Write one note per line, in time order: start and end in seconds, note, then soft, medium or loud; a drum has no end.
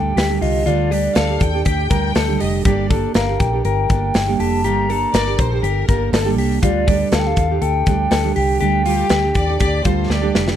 0.00 0.13 D2 loud
0.00 0.29 G3 medium
0.00 0.29 D4 medium
0.00 0.28 G4 medium
0.00 0.14 A4 medium
0.00 0.28 A4 medium
0.00 0.43 G5 loud
0.16 0.37 D2 loud
0.16 0.41 G4 medium
0.16 snare loud
0.16 hi-hat pedal medium
0.16 open hi-hat medium
0.29 0.65 D3 medium
0.29 0.66 G3 medium
0.29 0.66 D4 medium
0.29 0.66 G4 medium
0.29 0.67 A4 medium
0.41 0.62 C2 medium
0.41 0.65 F4 medium
0.41 0.68 D#5 medium
0.41 hi-hat pedal medium
0.41 open hi-hat medium
0.66 1.07 D2 loud
0.66 0.92 D3 medium
0.66 0.89 G3 medium
0.66 0.91 D4 medium
0.66 0.91 F4 loud
0.66 0.92 G4 medium
0.66 0.92 A4 loud
0.66 1.66 D5 loud
0.66 hi-hat pedal medium
0.66 open hi-hat loud
0.91 1.28 G3 medium
0.91 1.29 D4 medium
0.91 1.16 G4 medium
0.91 1.29 G4 medium
0.91 1.27 A4 medium
0.91 hi-hat pedal medium
0.91 open hi-hat medium
1.15 1.37 D2 loud
1.15 1.63 A4 medium
1.15 1.39 F5 loud
1.15 snare loud
1.15 hi-hat pedal medium
1.15 open hi-hat medium
1.28 1.55 D4 soft
1.28 1.53 G4 medium
1.28 1.52 A4 medium
1.40 1.62 D#2 loud
1.40 1.66 G5 loud
1.40 kick medium
1.40 hi-hat pedal medium
1.40 open hi-hat medium
1.53 1.90 D4 medium
1.53 1.91 G4 medium
1.53 1.91 A4 medium
1.65 1.86 D2 loud
1.65 1.90 G4 medium
1.65 2.37 G5 loud
1.65 kick medium
1.65 hi-hat pedal medium
1.65 open hi-hat medium
1.90 2.11 D2 medium
1.90 2.28 G3 medium
1.90 2.28 D4 medium
1.90 2.27 G4 medium
1.90 2.26 A4 medium
1.90 2.15 A#4 medium
1.90 kick loud
1.90 hi-hat pedal medium
1.90 open hi-hat medium
2.15 2.36 D2 loud
2.15 2.41 A4 medium
2.15 snare loud
2.15 hi-hat pedal medium
2.15 open hi-hat medium
2.28 2.65 D3 medium
2.28 2.64 G3 medium
2.28 2.65 D4 medium
2.28 2.65 G4 medium
2.28 2.65 A4 medium
2.40 2.61 F1 medium
2.40 2.64 G4 medium
2.40 2.66 D#5 medium
2.40 hi-hat pedal medium
2.40 open hi-hat medium
2.65 3.06 G1 loud
2.65 2.90 G3 medium
2.65 2.88 A#3 medium
2.65 2.89 D4 medium
2.65 2.90 G4 loud
2.65 2.90 G4 medium
2.65 2.91 A4 medium
2.65 3.01 D5 medium
2.65 kick loud
2.65 hi-hat pedal medium
2.65 open hi-hat loud
2.89 3.27 A#3 medium
2.89 3.28 D4 medium
2.89 3.28 G4 medium
2.89 3.15 A4 medium
2.89 3.26 A4 medium
2.89 kick loud
2.89 hi-hat pedal medium
2.89 open hi-hat medium
3.14 3.36 G1 loud
3.14 3.62 A#4 medium
3.14 3.38 F5 medium
3.14 snare loud
3.14 hi-hat pedal medium
3.14 open hi-hat loud
3.27 3.54 D4 soft
3.27 3.52 G4 soft
3.27 3.51 A4 medium
3.39 3.60 A#1 medium
3.39 3.63 G5 medium
3.39 kick medium
3.39 hi-hat pedal medium
3.39 open hi-hat medium
3.52 3.89 D4 soft
3.52 3.90 G4 medium
3.52 3.90 A4 medium
3.64 3.85 G1 loud
3.64 4.15 A#4 medium
3.64 4.41 G5 loud
3.64 hi-hat pedal medium
3.64 open hi-hat loud
3.89 4.10 G1 loud
3.89 4.27 A#3 medium
3.89 4.27 D4 medium
3.89 4.26 G4 medium
3.89 4.25 A4 medium
3.89 kick medium
3.89 hi-hat pedal medium
3.89 open hi-hat medium
4.14 4.35 G1 loud
4.14 4.40 A4 medium
4.14 snare loud
4.14 hi-hat pedal medium
4.14 open hi-hat medium
4.26 4.63 G3 medium
4.26 4.64 A#3 medium
4.26 4.64 D4 medium
4.26 4.64 G4 medium
4.26 4.64 A4 medium
4.39 4.64 F1 medium
4.39 4.63 G4 medium
4.39 4.66 A5 loud
4.39 hi-hat pedal medium
4.39 open hi-hat medium
4.64 5.05 G1 loud
4.64 4.89 G3 medium
4.64 4.87 A#3 medium
4.64 4.88 D4 medium
4.64 4.90 G4 loud
4.64 4.89 G4 medium
4.64 4.90 A4 medium
4.64 5.63 A#5 loud
4.64 hi-hat pedal medium
4.64 open hi-hat loud
4.89 5.26 A#3 medium
4.89 5.27 D4 medium
4.89 5.26 G4 medium
4.89 5.14 A4 medium
4.89 hi-hat pedal medium
4.89 open hi-hat medium
5.13 5.34 G1 loud
5.13 5.61 A#4 medium
5.13 5.37 D5 loud
5.13 snare loud
5.13 hi-hat pedal medium
5.13 open hi-hat loud
5.26 5.52 D4 soft
5.26 5.51 G4 medium
5.26 5.49 A4 medium
5.38 5.59 A#1 loud
5.38 5.64 C5 loud
5.38 kick loud
5.38 hi-hat pedal medium
5.38 open hi-hat medium
5.50 5.88 D4 medium
5.50 5.88 G4 medium
5.50 5.88 A4 medium
5.63 5.83 G1 loud
5.63 5.88 G4 medium
5.63 6.13 A#4 loud
5.63 hi-hat pedal medium
5.63 open hi-hat loud
5.88 6.09 G1 medium
5.88 6.25 A#3 medium
5.88 6.25 D4 medium
5.88 6.24 G4 medium
5.88 6.23 A4 medium
5.88 6.13 A#4 medium
5.88 kick medium
5.88 hi-hat pedal medium
5.88 open hi-hat medium
6.13 6.38 G1 loud
6.13 6.48 A4 medium
6.13 6.38 A4 medium
6.13 snare loud
6.13 hi-hat pedal medium
6.13 open hi-hat medium
6.24 6.61 G3 medium
6.24 6.62 A#3 medium
6.24 6.62 D4 medium
6.24 6.62 G4 medium
6.24 6.62 A4 medium
6.38 6.58 C2 medium
6.38 6.62 G4 medium
6.38 hi-hat pedal medium
6.38 open hi-hat medium
6.61 7.03 D2 loud
6.61 6.87 D3 medium
6.61 6.85 G3 medium
6.61 6.86 D4 medium
6.61 6.87 F4 loud
6.61 6.88 G4 medium
6.61 6.88 A4 medium
6.61 7.15 D5 loud
6.61 kick loud
6.61 hi-hat pedal medium
6.61 open hi-hat loud
6.86 7.24 G3 medium
6.86 7.25 D4 medium
6.86 7.12 G4 medium
6.86 7.24 G4 medium
6.86 7.22 A4 medium
6.86 kick loud
6.86 hi-hat pedal medium
6.86 open hi-hat medium
7.12 7.32 D2 loud
7.12 7.59 A4 medium
7.12 7.21 F5 loud
7.12 snare loud
7.12 hi-hat pedal medium
7.12 open hi-hat loud
7.19 7.28 G5 medium
7.24 7.50 D4 soft
7.24 7.50 G4 soft
7.24 7.48 A4 medium
7.24 7.62 F5 loud
7.36 7.57 D#2 loud
7.36 kick medium
7.36 hi-hat pedal medium
7.36 open hi-hat medium
7.49 7.86 D4 medium
7.49 7.87 G4 medium
7.49 7.86 A4 medium
7.62 7.82 D2 loud
7.62 8.08 A4 medium
7.62 8.32 G5 loud
7.62 hi-hat pedal medium
7.62 open hi-hat medium
7.86 8.07 D2 loud
7.86 8.24 G3 medium
7.86 8.24 D4 medium
7.86 8.23 G4 medium
7.86 8.22 A4 medium
7.86 kick medium
7.86 hi-hat pedal medium
7.86 open hi-hat medium
8.11 8.32 D2 loud
8.11 8.35 A4 medium
8.11 snare loud
8.11 hi-hat pedal medium
8.11 open hi-hat medium
8.24 8.59 D3 medium
8.24 8.60 G3 medium
8.24 8.61 D4 medium
8.24 8.61 G4 medium
8.24 8.61 A4 medium
8.36 8.57 C2 medium
8.36 8.59 G4 medium
8.36 10.06 G5 loud
8.36 hi-hat pedal medium
8.36 open hi-hat medium
8.61 9.02 D2 loud
8.61 8.86 D3 medium
8.61 8.84 G3 medium
8.61 8.85 D4 medium
8.61 8.85 G4 loud
8.61 8.86 G4 medium
8.61 8.87 A4 medium
8.61 hi-hat pedal medium
8.61 open hi-hat loud
8.85 9.23 G3 medium
8.85 9.23 D4 medium
8.85 9.10 F4 medium
8.85 9.32 G4 loud
8.85 9.23 G4 medium
8.85 9.21 A4 medium
8.85 hi-hat pedal medium
8.85 open hi-hat medium
9.09 9.31 D2 loud
9.09 9.57 G4 medium
9.09 snare loud
9.09 hi-hat pedal medium
9.09 open hi-hat medium
9.22 9.49 D4 medium
9.22 9.48 G4 medium
9.22 9.46 A4 medium
9.35 9.56 D#2 loud
9.35 9.59 D5 loud
9.35 kick medium
9.35 hi-hat pedal medium
9.35 open hi-hat medium
9.47 9.83 D4 medium
9.47 9.84 G4 medium
9.47 9.85 A4 medium
9.60 9.81 D2 loud
9.60 9.85 G4 medium
9.60 9.83 D5 loud
9.60 kick loud
9.60 hi-hat pedal medium
9.60 open hi-hat loud
9.84 10.05 D2 medium
9.84 10.22 G3 medium
9.84 10.22 D4 medium
9.84 10.10 F4 medium
9.84 10.21 G4 medium
9.84 10.20 A4 medium
9.84 10.10 C5 medium
9.84 kick medium
9.84 hi-hat pedal medium
9.84 open hi-hat medium
10.09 10.30 D2 loud
10.09 10.34 G4 medium
10.09 10.56 D5 medium
10.09 snare medium
10.22 10.56 D3 medium
10.22 10.56 G3 medium
10.22 10.56 D4 medium
10.22 10.56 G4 medium
10.22 10.56 A4 medium
10.35 10.55 F1 medium
10.35 10.56 G4 medium
10.35 snare medium
10.48 snare medium